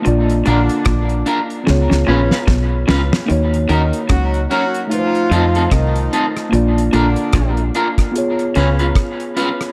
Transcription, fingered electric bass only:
X:1
M:4/4
L:1/16
Q:"Swing 16ths" 1/4=74
K:Bbphr
V:1 name="Fingered electric bass" clef=bass
B,,,2 B,,, z B,,,2 z2 D,, D,, B,,, z C,,2 D,, z | E,,2 E,, z D,,2 z4 F,,2 =C,,2 z2 | B,,,2 B,,, z B,,,2 z4 D,,2 z4 |]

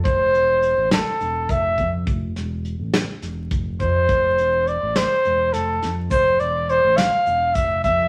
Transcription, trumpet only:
X:1
M:7/8
L:1/16
Q:1/4=104
K:F
V:1 name="Trumpet"
c6 A4 e3 z | z12 c2- | c4 d2 c4 A3 z | c2 d2 c2 f4 e2 e2 |]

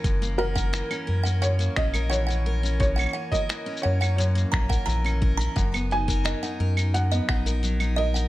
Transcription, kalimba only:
X:1
M:4/4
L:1/16
Q:1/4=87
K:F#mix
V:1 name="Kalimba"
z2 f f z3 f f z3 f f z2 | z f f z3 f f z2 a f a z2 a | f z3 d f z3 d f z3 d f |]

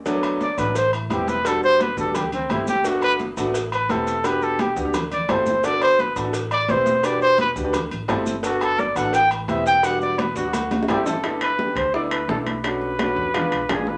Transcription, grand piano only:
X:1
M:4/4
L:1/16
Q:1/4=172
K:G
V:1 name="Grand piano"
[F,A,B,D]4 z2 [F,A,B,D] [F,A,B,D] z4 [G,B,CE]3 z | [G,B,DF]4 z2 [G,B,DF] [G,B,DF] z4 [A,CEG]3 z | [A,B,DF]4 z2 [A,B,DF] [A,B,DF] z4 [B,CEG]3 z | [B,DFG]4 z2 [B,DFG] [B,DFG] z4 [CEGA]3 z |
[B,DFA]4 z2 [B,DFA] [B,DFA] z4 [CEGB]3 z | [DFGB]4 z2 [DFGB] [DFGB] z4 [CEGA]3 z | [B,DFA]4 z2 [B,DFA] [B,DFA] z4 [B,CEG]3 z | [G,B,DF]4 z2 [G,B,DF] [G,B,DF] z4 [G,A,CE]3 z |
[A,B,DE]3 z [A,B,DG]3 z [A,B,DE]3 z [A,B,DE]3 z | [A,^CDF]3 z [A,CDF]3 z [^G,B,D=F]3 z [G,B,DF]3 z |]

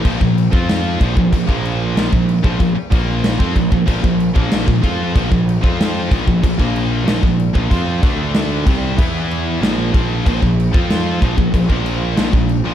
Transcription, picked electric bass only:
X:1
M:4/4
L:1/16
Q:1/4=94
K:Bblyd
V:1 name="Picked electric bass" clef=bass
B,,, B,,,2 F,,3 B,,, B,,, B,,, B,,,3 B,,, B,,,2 B,,, | B,,, z B,,,3 F,, B,,, B,,, B,,, B,,,2 B,,,2 B,,, F,,2 | B,,, B,,,2 F,,3 B,,, B,,, B,,, B,,,3 B,,, B,,,2 B,,, | F,,2 D,,4 C,,2 E,,4 B,,,2 B,,,2 |
B,,, B,,,2 F,,3 B,,, B,,, B,,, B,,,3 B,,, B,,,2 B,,, |]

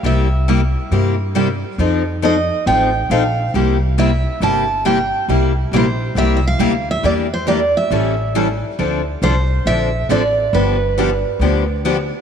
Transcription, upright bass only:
X:1
M:4/4
L:1/8
Q:"Swing" 1/4=137
K:Cmix
V:1 name="Upright bass" clef=bass
C,,4 G,,4 | F,,4 A,,,2 B,,,2 | C,,4 G,,,4 | C,,2 B,,,2 C,,2 D,,2 |
E,,4 A,,,4 | D,,2 C,,2 B,,,2 A,,,2 | G,,,4 D,,4 |]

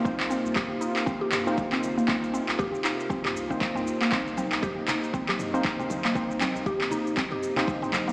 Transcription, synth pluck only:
X:1
M:4/4
L:1/16
Q:"Swing 16ths" 1/4=118
K:Cm
V:1 name="Synth pluck"
C z C z G z E z C G z C z C z B, | C z C z G z E z C G z C z C z B, | C z C z G z E z C G z C z C z B, | C z C z G z E z C G z C z C z B, |]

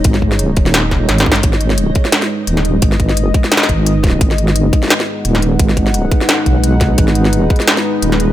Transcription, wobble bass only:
X:1
M:4/4
L:1/8
Q:"Swing 16ths" 1/4=173
K:G#m
V:1 name="Wobble bass" clef=bass
G,,,3 D,,,3 G,,,2 | G,,,3 z3 D,,,2 | G,,,3 z2 G,,,3 | G,,,3 z3 D,,,2 |
G,,,3 z2 B,,,3 | G,,,3 z3 D,,,2 |]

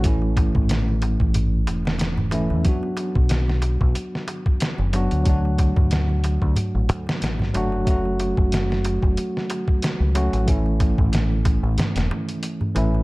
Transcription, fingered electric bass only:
X:1
M:4/4
L:1/16
Q:"Swing 16ths" 1/4=92
K:Amix
V:1 name="Fingered electric bass" clef=bass
A,,,3 A,,,4 A,,,3 E,,,4- E,,, E,, | z3 B,,,4 B,,, z4 z F,,,2 D,,- | D,,3 D,,4 D,, z A,,, D,, z A,,,2 F,,,2- | F,,,3 F,,,4 F,,, z4 z C,,2 A,,,- |
A,,,3 A,,,4 A,,, z E,,, z4 A,,,2 |]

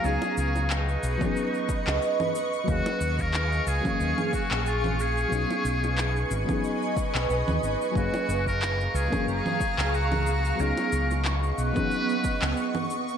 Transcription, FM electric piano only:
X:1
M:4/4
L:1/16
Q:"Swing 16ths" 1/4=91
K:C#mix
V:1 name="FM electric piano"
[F,B,CDG]6- [F,B,CDG] [F,B,CDG]6- [F,B,CDG] z2 | [F,A,CGe]6- [F,A,CGe] [F,A,CGe]8- [F,A,CGe] | [F,B,CDG]6- [F,B,CDG] [F,B,CDG]8- [F,B,CDG] | [F,A,CGe]6- [F,A,CGe] [F,A,CGe]8- [F,A,CGe] |
[F,B,CDG]6- [F,B,CDG] [F,B,CDG]6- [F,B,CDG] z2 |]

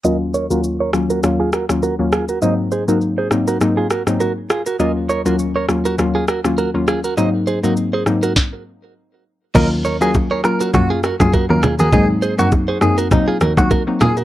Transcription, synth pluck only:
X:1
M:4/4
L:1/16
Q:"Swing 16ths" 1/4=101
K:Ebdor
V:1 name="Synth pluck"
[E,,G,B,DF]3 [E,,G,B,DF]3 [E,,G,B,DF]2 [E,,G,B,DF] z2 [E,,G,B,DF] z [E,,G,B,DF] z2 | [A,,G,B,CE]3 [A,,G,B,CE]3 [A,,G,B,CE]2 [A,,G,B,CE] z2 [A,,G,B,CE] z4 | [E,,G,B,DF]3 [E,,G,B,DF]3 [E,,G,B,DF]2 [E,,G,B,DF] z2 [E,,G,B,DF] z [E,,G,B,DF] z2 | [A,,G,B,CE]3 [A,,G,B,CE]3 [A,,G,B,CE]2 z8 |
[G,B,DF]3 [G,B,DF]3 [G,B,DF]2 [G,B,DF] z2 [G,B,DF] z [G,B,DF] z2 | [G,B,CE]3 [G,B,CE]3 [G,B,CE]2 [G,B,CE] z2 [G,B,CE] z [G,B,CE] z2 |]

